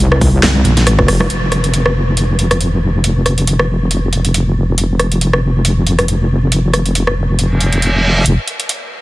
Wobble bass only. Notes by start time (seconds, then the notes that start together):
Already playing: C2
0.21 C2
0.43 C2
0.65 A#1
0.87 G#1
0.99 F1
1.08 F1
1.30 F1
8.26 F1